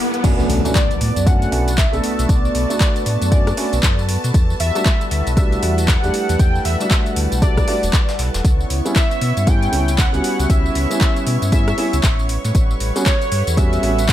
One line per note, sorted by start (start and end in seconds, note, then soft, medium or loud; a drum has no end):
0.00 0.20 G3 medium
0.00 0.20 E4 medium
0.00 1.75 E4 medium
0.00 0.20 A4 medium
0.00 0.20 B4 medium
0.00 1.16 B4 medium
0.00 0.20 F#5 medium
0.00 0.91 F#5 medium
0.00 0.25 D6 medium
0.00 riser medium
0.14 closed hi-hat medium
0.23 0.45 B1 loud
0.23 0.59 A3 loud
0.23 5.33 B3 medium
0.23 4.30 B3 medium
0.23 0.59 C#4 medium
0.23 0.59 D4 loud
0.23 0.59 F#4 loud
0.23 8.41 A4 medium
0.23 8.41 B4 medium
0.23 8.46 A5 medium
0.23 kick loud
0.23 closed hi-hat medium
0.23 tambourine medium
0.23 crash loud
0.23 impact medium
0.40 5.51 F#4 medium
0.40 tambourine soft
0.50 0.61 B1 medium
0.50 open hi-hat loud
0.50 tambourine medium
0.65 0.75 A3 loud
0.65 0.75 C#4 medium
0.65 0.76 D4 medium
0.65 0.76 F#4 loud
0.65 closed hi-hat medium
0.65 tambourine medium
0.75 1.28 D5 loud
0.75 kick loud
0.75 snare loud
0.75 clap loud
0.75 closed hi-hat medium
0.75 tambourine medium
0.91 closed hi-hat soft
0.91 tambourine soft
1.00 1.13 A2 medium
1.00 5.85 C#6 medium
1.00 snare soft
1.00 open hi-hat loud
1.00 tambourine medium
1.16 1.48 F#2 medium
1.16 closed hi-hat medium
1.16 tambourine medium
1.26 1.49 A3 loud
1.26 1.50 C#4 medium
1.26 1.50 D4 medium
1.26 1.50 F#4 loud
1.26 1.79 F#5 loud
1.26 kick loud
1.26 closed hi-hat medium
1.26 tambourine medium
1.42 closed hi-hat soft
1.42 tambourine soft
1.52 1.87 B1 medium
1.52 1.68 A3 medium
1.52 1.68 C#4 medium
1.52 1.68 D4 medium
1.52 1.68 F#4 medium
1.52 open hi-hat loud
1.52 tambourine medium
1.68 closed hi-hat soft
1.68 closed hi-hat medium
1.68 tambourine medium
1.78 2.31 E5 loud
1.78 kick loud
1.78 snare loud
1.78 clap loud
1.78 closed hi-hat medium
1.78 tambourine medium
1.92 2.01 B1 medium
1.92 2.66 A3 medium
1.92 2.66 B3 medium
1.92 2.67 D4 medium
1.92 2.67 A4 loud
1.92 closed hi-hat soft
1.92 tambourine soft
2.04 open hi-hat loud
2.04 tambourine medium
2.19 2.27 B1 loud
2.19 snare soft
2.19 closed hi-hat medium
2.19 tambourine medium
2.29 2.50 B1 loud
2.29 3.31 D5 loud
2.29 kick loud
2.29 closed hi-hat medium
2.29 tambourine medium
2.45 tambourine soft
2.55 2.66 B1 medium
2.55 snare soft
2.55 open hi-hat loud
2.55 tambourine medium
2.69 3.29 A3 medium
2.69 3.29 B3 medium
2.69 3.29 D4 medium
2.69 3.30 F#4 medium
2.69 closed hi-hat medium
2.69 tambourine medium
2.80 kick loud
2.80 snare loud
2.80 clap loud
2.80 closed hi-hat medium
2.80 tambourine medium
2.96 closed hi-hat soft
2.96 tambourine soft
3.06 3.18 A2 medium
3.06 open hi-hat loud
3.06 tambourine medium
3.22 3.53 F#2 medium
3.22 closed hi-hat medium
3.22 tambourine medium
3.31 3.47 A3 medium
3.31 3.47 C#4 medium
3.31 3.47 D4 medium
3.31 3.48 F#4 loud
3.31 4.05 D5 medium
3.31 kick loud
3.31 closed hi-hat medium
3.31 tambourine medium
3.47 cross-stick medium
3.47 closed hi-hat soft
3.47 tambourine soft
3.57 3.73 A3 medium
3.57 3.73 C#4 medium
3.57 3.73 D4 medium
3.57 3.73 F#4 medium
3.57 open hi-hat loud
3.57 open hi-hat medium
3.73 3.81 B1 loud
3.73 closed hi-hat medium
3.73 tambourine medium
3.83 4.18 F#2 medium
3.83 kick loud
3.83 snare loud
3.83 clap loud
3.83 closed hi-hat medium
3.83 tambourine medium
3.99 tambourine soft
4.09 open hi-hat loud
4.09 tambourine medium
4.24 4.32 B2 medium
4.24 snare soft
4.24 closed hi-hat medium
4.24 tambourine medium
4.34 4.55 E2 loud
4.34 8.41 G3 medium
4.34 9.60 E4 medium
4.34 8.41 F#5 medium
4.34 kick loud
4.34 closed hi-hat medium
4.34 tambourine medium
4.50 tambourine soft
4.60 4.72 E2 medium
4.60 5.33 E5 loud
4.60 open hi-hat loud
4.60 tambourine medium
4.65 9.38 B4 medium
4.75 4.86 G3 medium
4.75 4.86 A3 medium
4.75 4.86 D4 medium
4.75 4.86 F#4 loud
4.75 9.70 F#5 medium
4.75 closed hi-hat medium
4.75 tambourine medium
4.86 kick loud
4.86 snare loud
4.86 clap loud
4.86 closed hi-hat medium
4.86 tambourine medium
5.01 closed hi-hat soft
5.01 tambourine soft
5.11 5.23 D2 medium
5.11 snare soft
5.11 open hi-hat loud
5.11 tambourine medium
5.27 5.58 B1 medium
5.27 closed hi-hat medium
5.27 tambourine medium
5.36 5.60 G3 loud
5.36 5.60 A3 medium
5.36 5.60 D4 medium
5.36 5.60 F#4 loud
5.36 5.90 E5 loud
5.36 kick loud
5.36 closed hi-hat medium
5.36 tambourine medium
5.52 closed hi-hat soft
5.52 tambourine soft
5.62 5.98 E2 medium
5.62 5.78 G3 medium
5.62 5.78 A3 medium
5.62 5.78 D4 medium
5.62 5.78 F#4 medium
5.62 open hi-hat loud
5.62 tambourine medium
5.78 closed hi-hat soft
5.78 closed hi-hat medium
5.78 tambourine medium
5.88 6.41 F#5 loud
5.88 kick loud
5.88 snare loud
5.88 clap loud
5.88 closed hi-hat medium
5.88 tambourine medium
6.03 6.11 E2 medium
6.03 6.76 G3 medium
6.03 6.77 A3 medium
6.03 6.77 D4 medium
6.03 6.77 G4 loud
6.03 closed hi-hat soft
6.03 tambourine soft
6.14 open hi-hat loud
6.14 tambourine medium
6.29 6.37 E2 medium
6.29 snare soft
6.29 closed hi-hat medium
6.29 tambourine medium
6.39 6.60 E2 loud
6.39 6.65 G5 loud
6.39 kick loud
6.39 closed hi-hat medium
6.39 tambourine medium
6.55 tambourine soft
6.65 6.77 E2 medium
6.65 7.13 E5 loud
6.65 snare soft
6.65 open hi-hat loud
6.65 tambourine medium
6.79 7.39 G3 medium
6.79 7.39 A3 medium
6.79 7.40 D4 medium
6.79 7.40 F#4 medium
6.79 closed hi-hat medium
6.79 tambourine medium
6.91 kick loud
6.91 snare loud
6.91 clap loud
6.91 closed hi-hat medium
6.91 tambourine medium
7.06 closed hi-hat soft
7.06 tambourine soft
7.16 7.28 D2 medium
7.16 open hi-hat loud
7.16 tambourine medium
7.32 7.64 B1 medium
7.32 closed hi-hat medium
7.32 tambourine medium
7.41 7.57 G3 medium
7.41 7.57 A3 medium
7.41 7.58 D4 medium
7.41 7.58 F#4 loud
7.41 8.15 D5 loud
7.41 kick loud
7.41 closed hi-hat medium
7.41 tambourine medium
7.57 kick medium
7.57 cross-stick medium
7.57 closed hi-hat soft
7.57 tambourine soft
7.67 7.83 G3 medium
7.67 7.83 A3 medium
7.67 7.83 D4 medium
7.67 7.84 F#4 loud
7.67 open hi-hat loud
7.67 open hi-hat medium
7.83 7.91 E1 loud
7.83 closed hi-hat soft
7.83 tambourine medium
7.93 kick loud
7.93 snare loud
7.93 clap loud
7.93 closed hi-hat medium
7.93 tambourine medium
8.09 snare loud
8.09 tambourine medium
8.09 tambourine soft
8.19 8.31 B1 medium
8.19 snare loud
8.19 open hi-hat loud
8.19 tambourine medium
8.34 8.42 E1 loud
8.34 snare loud
8.34 closed hi-hat medium
8.34 tambourine medium
8.44 8.65 C#2 loud
8.44 12.25 B3 medium
8.44 12.99 C#4 medium
8.44 12.25 E4 medium
8.44 14.13 C#5 medium
8.44 14.13 C#6 medium
8.44 kick loud
8.44 closed hi-hat medium
8.44 tambourine medium
8.61 tambourine soft
8.70 8.82 C#2 medium
8.70 12.29 B5 medium
8.70 open hi-hat loud
8.70 tambourine medium
8.85 8.96 G3 medium
8.85 8.96 B3 medium
8.85 8.96 C#4 medium
8.85 8.96 E4 loud
8.85 closed hi-hat soft
8.85 tambourine medium
8.96 9.49 E5 loud
8.96 kick loud
8.96 snare loud
8.96 clap loud
8.96 closed hi-hat medium
8.96 tambourine medium
9.06 13.68 C#5 medium
9.11 closed hi-hat soft
9.11 tambourine soft
9.21 9.33 B2 medium
9.21 snare soft
9.21 open hi-hat loud
9.21 tambourine medium
9.37 9.69 G2 medium
9.37 closed hi-hat medium
9.37 tambourine medium
9.46 9.70 G3 loud
9.46 9.70 B3 medium
9.46 9.70 C#4 medium
9.46 9.71 E4 loud
9.46 10.00 G5 loud
9.46 kick loud
9.46 closed hi-hat medium
9.46 tambourine medium
9.63 closed hi-hat soft
9.63 tambourine soft
9.72 10.08 C#2 medium
9.72 9.88 G3 medium
9.72 9.88 B3 medium
9.72 9.88 C#4 medium
9.72 9.89 E4 medium
9.72 open hi-hat loud
9.72 tambourine medium
9.88 closed hi-hat soft
9.88 tambourine medium
9.98 10.51 F#5 loud
9.98 kick loud
9.98 snare loud
9.98 clap loud
9.98 closed hi-hat medium
9.98 tambourine medium
10.13 10.21 C#2 medium
10.13 10.86 G3 medium
10.13 10.87 B3 medium
10.13 10.87 C#4 medium
10.13 10.88 F#4 loud
10.13 closed hi-hat soft
10.13 tambourine soft
10.24 open hi-hat loud
10.24 tambourine medium
10.39 10.47 C#2 loud
10.39 snare soft
10.39 closed hi-hat medium
10.39 tambourine medium
10.50 10.70 C#2 loud
10.50 11.52 E5 loud
10.50 kick loud
10.50 closed hi-hat medium
10.50 tambourine medium
10.66 tambourine soft
10.75 10.87 C#2 medium
10.75 snare soft
10.75 open hi-hat loud
10.75 tambourine medium
10.90 11.49 G3 medium
10.90 11.50 B3 medium
10.90 11.50 C#4 medium
10.90 11.50 E4 medium
10.90 closed hi-hat medium
10.90 tambourine medium
11.01 kick loud
11.01 snare loud
11.01 clap loud
11.01 closed hi-hat medium
11.01 tambourine medium
11.16 closed hi-hat soft
11.16 tambourine soft
11.27 11.38 B2 medium
11.27 open hi-hat loud
11.27 tambourine medium
11.42 11.74 G2 medium
11.42 closed hi-hat medium
11.42 tambourine medium
11.52 11.68 G3 loud
11.52 11.68 B3 medium
11.52 11.68 C#4 medium
11.52 11.68 E4 loud
11.52 12.25 E5 medium
11.52 kick loud
11.52 closed hi-hat medium
11.52 tambourine medium
11.68 cross-stick medium
11.68 closed hi-hat soft
11.68 tambourine soft
11.77 11.93 G3 medium
11.77 11.93 B3 medium
11.77 11.94 C#4 medium
11.77 11.94 E4 loud
11.77 open hi-hat loud
11.77 open hi-hat medium
11.93 12.01 C#2 loud
11.93 closed hi-hat medium
11.93 tambourine medium
12.03 12.38 A1 medium
12.03 kick loud
12.03 snare loud
12.03 clap loud
12.03 closed hi-hat medium
12.03 tambourine medium
12.19 tambourine soft
12.29 14.13 G3 medium
12.29 14.13 A4 medium
12.29 14.13 B4 medium
12.29 14.13 F#5 medium
12.29 open hi-hat loud
12.29 tambourine medium
12.45 12.52 A2 medium
12.45 snare medium
12.45 closed hi-hat medium
12.45 tambourine medium
12.55 12.75 A1 loud
12.55 kick loud
12.55 closed hi-hat medium
12.55 tambourine medium
12.62 14.13 E5 medium
12.62 14.13 B5 medium
12.71 tambourine soft
12.80 12.92 A1 medium
12.80 open hi-hat loud
12.80 tambourine medium
12.95 13.06 G3 loud
12.95 13.06 B3 medium
12.95 13.06 C#4 medium
12.95 13.07 F#4 loud
12.95 closed hi-hat medium
12.95 tambourine medium
13.06 13.59 C#5 loud
13.06 kick loud
13.06 snare loud
13.06 clap loud
13.06 closed hi-hat medium
13.06 tambourine medium
13.22 closed hi-hat soft
13.22 tambourine soft
13.32 13.43 G2 medium
13.32 snare soft
13.32 open hi-hat loud
13.32 tambourine medium
13.47 13.79 E2 medium
13.47 closed hi-hat medium
13.47 tambourine medium
13.57 13.80 G3 loud
13.57 13.80 B3 medium
13.57 13.81 C#4 medium
13.57 13.81 F#4 loud
13.57 14.10 E5 loud
13.57 kick loud
13.57 closed hi-hat medium
13.57 tambourine medium
13.73 closed hi-hat soft
13.73 tambourine soft
13.82 14.13 A1 medium
13.82 13.98 G3 medium
13.82 13.98 B3 medium
13.82 13.99 C#4 medium
13.82 13.99 F#4 medium
13.82 open hi-hat loud
13.82 tambourine medium
13.99 closed hi-hat soft
13.99 closed hi-hat medium
13.99 tambourine medium
14.09 14.13 F#5 loud
14.09 kick loud
14.09 snare loud
14.09 clap loud
14.09 closed hi-hat medium
14.09 tambourine medium